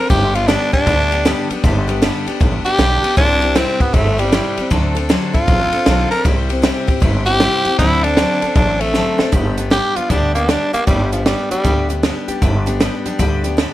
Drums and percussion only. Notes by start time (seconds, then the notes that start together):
0.10 kick, ride
0.35 ride
0.49 snare, ride
0.73 kick, ride
0.87 kick, ride
1.12 ride
1.26 snare, ride
1.50 ride
1.64 kick, ride
1.89 ride
2.02 snare, ride
2.27 ride
2.41 kick, ride
2.66 ride
2.79 snare, ride
3.04 ride
3.17 kick, ride
3.42 ride
3.56 snare, ride
3.80 kick, ride
3.94 kick, ride
4.19 ride
4.33 snare, ride
4.57 ride
4.71 kick, ride
4.96 ride
5.10 snare, ride
5.34 kick, ride
5.48 kick, ride
5.72 ride
5.86 snare, ride
6.12 ride
6.25 kick, ride
6.50 ride
6.63 snare, ride
6.88 kick, ride
7.02 kick, ride
7.27 ride
7.40 snare, ride
7.65 ride
7.79 kick, ride
8.04 ride
8.17 snare, ride
8.42 ride
8.55 kick, ride
8.81 ride
8.94 snare
9.19 snare
9.32 kick, closed hi-hat
9.58 closed hi-hat
9.71 snare, closed hi-hat
9.96 closed hi-hat
10.10 kick, closed hi-hat
10.35 closed hi-hat
10.49 snare, closed hi-hat
10.74 closed hi-hat
10.87 kick, closed hi-hat
11.13 closed hi-hat
11.26 snare, closed hi-hat
11.51 closed hi-hat
11.65 kick, closed hi-hat
11.90 closed hi-hat
12.03 snare, closed hi-hat
12.28 closed hi-hat
12.42 kick, closed hi-hat
12.67 closed hi-hat
12.81 snare, closed hi-hat
13.06 closed hi-hat
13.19 kick, closed hi-hat
13.44 closed hi-hat
13.58 snare, closed hi-hat